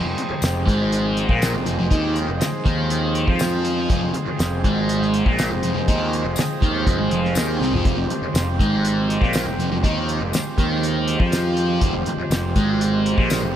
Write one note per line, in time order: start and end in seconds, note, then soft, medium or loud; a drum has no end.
0.00 13.56 F3 medium
0.00 13.56 G#3 medium
0.00 13.56 C4 medium
0.00 7.82 G#4 medium
0.00 13.56 C5 medium
0.04 0.16 F1 medium
0.04 0.16 F2 medium
0.17 muted picked electric bass stroke soft
0.17 muted distorted electric guitar stroke medium
0.17 closed hi-hat medium
0.29 muted distorted electric guitar stroke medium
0.29 muted picked electric bass stroke soft
0.42 0.65 F1 medium
0.42 0.62 F2 medium
0.42 snare loud
0.42 closed hi-hat medium
0.42 tambourine medium
0.66 1.25 G#1 medium
0.66 1.28 G#2 medium
0.66 1.28 G#3 medium
0.66 kick medium
0.66 closed hi-hat medium
0.92 closed hi-hat medium
1.17 closed hi-hat medium
1.28 1.52 A#1 loud
1.28 1.53 A#2 medium
1.28 1.53 A#3 loud
1.28 kick loud
1.42 snare loud
1.42 closed hi-hat medium
1.42 tambourine loud
1.53 1.65 F1 medium
1.53 1.65 F2 medium
1.66 1.78 F1 medium
1.66 1.78 F2 medium
1.66 closed hi-hat medium
1.79 1.91 F1 medium
1.79 1.91 F2 medium
1.90 2.26 D#2 medium
1.90 2.27 D#3 loud
1.90 2.28 D#4 loud
1.90 kick loud
1.90 closed hi-hat medium
2.16 closed hi-hat medium
2.29 2.40 F1 medium
2.29 2.40 F2 medium
2.41 muted distorted electric guitar stroke medium
2.41 muted picked electric bass stroke soft
2.41 snare loud
2.41 closed hi-hat medium
2.41 tambourine loud
2.65 3.24 D#2 medium
2.65 3.27 D#3 medium
2.65 3.27 D#4 medium
2.65 kick loud
2.65 closed hi-hat medium
2.90 closed hi-hat loud
3.15 closed hi-hat medium
3.27 3.85 F2 loud
3.27 3.89 F3 medium
3.27 3.90 F4 loud
3.27 kick loud
3.39 snare loud
3.39 closed hi-hat medium
3.39 tambourine medium
3.65 closed hi-hat medium
3.89 4.01 F1 medium
3.89 4.00 F2 medium
3.89 4.02 F3 loud
3.89 kick loud
3.89 closed hi-hat medium
4.01 4.14 F1 medium
4.01 4.12 F2 medium
4.13 muted distorted electric guitar stroke medium
4.13 muted picked electric bass stroke soft
4.13 closed hi-hat medium
4.26 muted distorted electric guitar stroke medium
4.26 muted picked electric bass stroke soft
4.38 4.62 F1 medium
4.38 4.58 F2 medium
4.38 snare loud
4.38 closed hi-hat medium
4.38 tambourine medium
4.64 5.22 G#1 medium
4.64 5.25 G#2 medium
4.64 5.26 G#3 medium
4.64 kick loud
4.64 closed hi-hat medium
4.89 closed hi-hat medium
5.02 snare soft
5.14 closed hi-hat medium
5.25 5.49 A#1 loud
5.25 5.49 A#2 medium
5.25 5.50 A#3 loud
5.25 kick loud
5.38 snare loud
5.38 closed hi-hat medium
5.38 tambourine medium
5.51 5.62 F1 medium
5.51 5.63 F2 medium
5.63 5.74 F1 medium
5.63 5.74 F2 medium
5.63 closed hi-hat medium
5.75 5.87 F1 medium
5.75 5.87 F2 medium
5.88 6.23 D#2 medium
5.88 6.24 D#3 medium
5.88 6.24 D#4 medium
5.88 kick loud
5.88 closed hi-hat medium
6.13 closed hi-hat medium
6.25 6.36 F1 medium
6.25 6.37 F2 medium
6.36 muted picked electric bass stroke soft
6.36 muted distorted electric guitar stroke medium
6.36 snare loud
6.36 closed hi-hat medium
6.36 tambourine loud
6.62 6.85 D#2 medium
6.62 6.86 D#3 medium
6.62 6.87 D#4 medium
6.62 kick loud
6.62 closed hi-hat medium
6.87 6.98 F1 medium
6.87 6.98 F2 medium
6.87 6.99 F3 medium
6.87 kick loud
6.87 closed hi-hat loud
6.99 7.10 G#1 medium
6.99 7.11 G#2 medium
6.99 7.11 G#3 medium
7.11 7.34 F1 medium
7.11 7.36 F2 medium
7.11 7.36 F3 medium
7.11 closed hi-hat medium
7.25 snare soft
7.35 7.58 D#2 medium
7.35 7.60 D#3 medium
7.35 7.61 D#4 medium
7.35 snare loud
7.35 closed hi-hat medium
7.35 tambourine loud
7.60 7.71 C2 medium
7.60 7.72 C3 medium
7.60 7.73 C4 medium
7.60 snare medium
7.71 7.83 F1 medium
7.71 7.85 F2 medium
7.71 7.85 F3 loud
7.71 floor tom medium
7.85 7.96 F1 medium
7.85 7.97 F2 medium
7.85 7.98 F3 medium
7.85 13.56 G4 medium
7.85 kick loud
7.85 closed hi-hat medium
7.96 8.08 F1 medium
7.96 8.09 F2 medium
8.09 muted picked electric bass stroke soft
8.09 muted distorted electric guitar stroke medium
8.09 closed hi-hat medium
8.22 muted picked electric bass stroke soft
8.22 muted distorted electric guitar stroke medium
8.34 8.57 F1 medium
8.34 8.54 F2 medium
8.34 snare loud
8.34 closed hi-hat medium
8.34 tambourine loud
8.60 9.17 G#1 medium
8.60 9.21 G#2 medium
8.60 9.21 G#3 loud
8.60 kick loud
8.60 closed hi-hat medium
8.85 closed hi-hat medium
9.10 closed hi-hat medium
9.21 9.44 A#1 medium
9.21 9.45 A#2 medium
9.21 9.46 A#3 loud
9.21 kick loud
9.21 snare soft
9.33 snare loud
9.33 closed hi-hat medium
9.33 tambourine loud
9.45 9.57 F1 medium
9.45 9.59 F2 medium
9.57 9.69 F1 medium
9.57 9.70 F2 medium
9.57 closed hi-hat medium
9.71 9.82 F1 medium
9.71 9.83 F2 medium
9.84 10.18 D#2 medium
9.84 10.20 D#3 medium
9.84 10.20 D#4 loud
9.84 kick loud
9.84 closed hi-hat medium
10.09 closed hi-hat medium
10.21 10.32 F1 medium
10.21 10.33 F2 medium
10.33 muted picked electric bass stroke soft
10.33 muted distorted electric guitar stroke medium
10.33 snare loud
10.33 closed hi-hat medium
10.33 tambourine medium
10.58 11.15 D#2 medium
10.58 11.19 D#3 medium
10.58 11.19 D#4 medium
10.58 kick loud
10.58 closed hi-hat medium
10.83 closed hi-hat medium
11.08 closed hi-hat medium
11.20 11.77 F2 medium
11.20 11.81 F3 medium
11.20 11.81 F4 loud
11.20 kick loud
11.32 snare loud
11.32 closed hi-hat medium
11.32 tambourine medium
11.57 closed hi-hat medium
11.81 11.92 F1 loud
11.81 11.93 F2 medium
11.81 11.93 F3 loud
11.81 kick loud
11.81 closed hi-hat medium
11.93 12.05 F1 medium
11.93 12.06 F2 medium
12.05 muted picked electric bass stroke soft
12.05 muted distorted electric guitar stroke medium
12.05 closed hi-hat medium
12.17 muted picked electric bass stroke soft
12.17 muted distorted electric guitar stroke medium
12.30 12.53 F1 medium
12.30 12.51 F2 medium
12.30 snare loud
12.30 closed hi-hat medium
12.30 tambourine medium
12.56 13.14 G#1 medium
12.56 13.17 G#2 medium
12.56 13.17 G#3 medium
12.56 kick loud
12.56 closed hi-hat medium
12.81 closed hi-hat medium
13.06 closed hi-hat medium
13.17 13.41 A#1 loud
13.17 13.41 A#2 loud
13.17 13.42 A#3 loud
13.17 kick loud
13.30 snare loud
13.30 closed hi-hat medium
13.30 tambourine medium
13.43 13.54 F1 medium
13.43 13.54 F2 medium